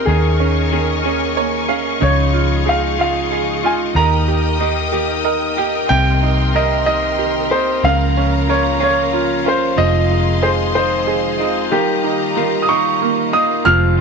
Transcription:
Already playing: A#4
0.05 D#2 D#3 A#3 C#4 G#4 D#5 G#5 C#6
0.40 C#4
0.71 D#3 A#3 C#4 G#4
1.03 D#3 A#3 C#4 G#4
1.37 A#3 C#5
1.68 A#3 C#4 G#4 F5
2.01 C#2 C#3 F3 G#3 D#4 F4 G#4 C#5 F5
2.33 F4
2.65 F3 G#3 D#4 F4 G#4 F5
2.98 C#3 F3 G#3 D#4 F4 F5
3.31 G#4
3.63 G#3 D#4 F4 G#5
3.95 D#2 D#3 A#3 D#4 G4 A#4 G5 A#5 D#6
4.28 G4
4.59 D#3 A#3 D#4 G4 D#5
4.92 D#3 A#3 D#4 G4
5.25 A#4 D#5
5.57 A#3 D#4 G4 G5
5.89 C2 C3 D#3 A#3 C4 G4 G5 C6
6.23 D#4
6.54 D#3 A#3 C4 G4 A#4 D#5
6.86 C3 D#3 A#3 C4 D#4 G4 D#5
7.19 G4
7.50 A#3 C4 D#4 G4 C5
7.83 C#2 C#3 F3 A#3 C#4 F4 F5 A#5
8.17 C#4
8.48 F3 A#3 C#4 F4 A#4 C#5
8.80 C#3 F3 A#3 C#4 F4 C#5
9.13 F4
9.44 A#3 C#4 F4 C5
9.77 F1 F2 C3 D#3 F3 G#3 C4 F4 G#4 D#5 C6
10.11 D#4
10.42 D#3 G#3 C4 F4 G#4 C5
10.74 F2 C3 D#3 G#3 C4 D#4 F4 C5
11.07 G#4
11.38 D#3 G#3 C4 D#4 F4
11.71 D#3 G3 A#3 D#4 F4 G4 A#5
12.04 D#4
12.35 D#3 G3 A#3 D#4 F4
12.62 D#6
12.69 D#3 G3 A#3 D#4 F4 C#6
13.02 A#3
13.33 A#3 D#4 F4 D#6
13.65 F1 F2 C3 F3 G#3 C4 F4 F6
13.97 F4

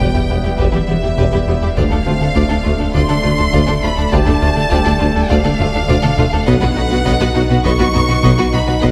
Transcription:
Already playing: E1 G3 B3 B4 E5 G5
0.00 E1 E2 G3 G4 B4, taiko
0.14 E2 G3 E4 G4
0.29 E1 E2 G3 B3 E4 G4 B4
0.44 E2 G3 E4 G4
0.58 E1 E2 G3 G4 B4 E5, taiko
0.72 E2 E3 G3 E4 G4
0.87 E1 E2 E3 G3 B3 E4 G4
1.02 E2 G3 E4 G4
1.17 E1 E2 G3 G4 B4, taiko
1.32 E2 E3 G3 E4 G4
1.47 E1 E2 G3 B3 E4 G4
1.62 E2 G3 E4 G4
1.76 D1 D2 A3 D4 F4 A4 D5 F5, taiko
1.91 D2 A3 D4 A4
2.06 D2 A3 C4 D4 F4 C5
2.21 D2 D3 A3 D4 A4
2.35 D2 A3 D4 F4 D5, taiko
2.49 D2 A3 D4 A4
2.64 D2 A3 D4 F4
2.79 D2 A3 D4 A4
2.93 D2 A3 D4 F4 D5 C6, taiko
3.08 D2 D3 A3 D4 A4
3.22 D2 D3 A3 D4 F4
3.38 D2 A3 D4 A4
3.52 D2 A3 D4 F4 D5, taiko
3.67 D2 D3 A3 D4 A4
3.82 D2 A3 D4 F4 B5
3.96 D2 A3 D4 A4
4.11 D2 A3 D4 F4 G4 D5 A5, taiko
4.25 D2 A3 D4 A4, taiko low-mid
4.41 D2 A3 D4 F4
4.55 D2 D3 A3 D4 A4
4.70 D2 G3 A3 D4 F4 G4 D5, taiko
4.84 D2 A3 D4 A4
4.99 D2 A3 D4 F4
5.14 D2 A3 D4 A4
5.29 D2 A3 D4 F4 D5 F5, taiko
5.44 D2 D3 A3 D4 A4
5.59 D2 D3 A3 D4 F4, taiko low-mid
5.74 D2 A3 D4 A4
5.88 D2 A3 D4 F4 D5, taiko mid
6.02 D2 D3 A3 D4 A4, taiko mid
6.18 D2 A3 D4 F4, taiko mid
6.32 D2 A3 D4 A4, taiko low
6.47 B1 B2 F#3 B3 D#4 F#4 B4 D#5 F#5, taiko
6.61 B2 B3 F#4 B4, taiko low-mid
6.76 B1 B2 B3 D#4 F#4 B4
6.89 B2 B3 F#4 B4
7.05 B1 B2 B3 F#4 B4 D#5, taiko
7.20 B2 B3 F#4 B4
7.34 B1 B2 B3 D#4 F#4
7.49 B2 B3 F#4 B4
7.64 B1 B2 B3 F#4 B4 D#5 C#6, taiko
7.79 B2 B3 F#4 B4
7.94 B1 B2 B3 D#4 F#4, taiko low-mid
8.08 B2 B3 F#4 B4
8.22 B1 B2 B3 F#4 B4 D#5, taiko
8.38 B2 B3 F#4 B4
8.52 B1 B2 B3 D#4 F#4 B5
8.66 B2 B3 F#4 B4
8.82 B1 B2 B3 F#4 B4 D#5 F#5, taiko

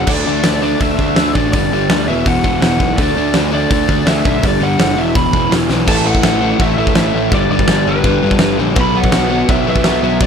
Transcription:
0.07 D2 D3 A3 D4 D5, kick, crash
0.26 D2 D3 A3 D4
0.44 D2 D3 A3 D4, snare, open hi-hat
0.62 D3 A3 D4 D5
0.80 D2 D3 A3 D4 E5, kick, open hi-hat
0.99 D2 D3 A3 D4, kick
1.16 D2 D3 A3 D4, snare, open hi-hat
1.34 A1 D3 A3 D4 D5, kick
1.53 G1 G2 D3 G3 D5, kick, open hi-hat
1.72 G1 G2 D3 G3
1.90 D2 G2 D3 G3, snare, open hi-hat
2.08 E1 E2 B2 E3 E5
2.26 E1 E2 B2 E3 F#5, kick, open hi-hat
2.44 E1 E2 B2 E3, kick
2.61 E1 E2 B2 E3 F#5, snare, open hi-hat
2.79 B1 E2 B2 E3, kick
2.96 D2 D3 A3 D4 D5, kick, open hi-hat
3.16 D2 D3 A3 D4
3.34 D2 D3 A3 D4, snare, open hi-hat
3.51 D3 A3 D4 D5
3.71 D2 D3 A3 D4, kick, open hi-hat
3.88 D2 D3 A3 D4, kick
4.06 D2 D3 A3 D4 E5, snare, open hi-hat
4.24 B1 D3 A3 D4, kick
4.42 G1 G2 D3 G3, kick, open hi-hat
4.47 D5
4.60 G1 G2 D3 G3 F#5
4.78 F#1 G2 D3 G3, snare, open hi-hat
4.97 E1 E2 B2 E3 E5
5.15 E1 E2 B2 E3 B5, kick, open hi-hat
5.33 E1 E2 B2 E3, kick
5.50 E1 E2 B2 E3, snare, open hi-hat
5.69 B1 E2 B2 E3, snare
5.87 A1 A2 E3 A3 A5, kick, crash
6.05 A2 E3 A3 F#5
6.15 kick
6.23 A1 A2 E3 A3, snare, crash
6.41 A2 E3 A3
6.59 A1 A2 E3 A3 E5, kick, crash
6.77 A1 A2 E3 A3 E5
6.87 kick
6.95 A1 A2 E3 A3, snare, crash
7.14 A1 A2 E3 A3
7.31 G1 G2 D3 G3 D5, kick, crash
7.50 G1 G2 D3 G3 D5
7.59 kick
7.68 G1 G2 D3 G3, snare, crash
7.86 G1 G2 D3 G3 B4
8.04 G1 G2 D3 G3, kick, crash
8.23 G1 G2 D3 G3
8.31 kick
8.39 G1 G2 D3 G3, snare, crash
8.58 A#1 G2 D3 G3
8.75 B1 B2 F#3 B3, kick, crash
8.81 B5
8.94 B2 F#3 B3 F#5
9.04 kick
9.12 B1 B2 F#3 B3, snare, crash
9.30 B2 F#3 B3
9.48 B1 B2 F#3 B3 E5, kick, crash
9.67 B1 B2 F#3 B3 E5
9.76 kick
9.84 B1 B2 F#3 B3, snare, crash
10.03 B1 B2 F#3 B3
10.20 B1 B2 F#3 B3 D5, kick, crash

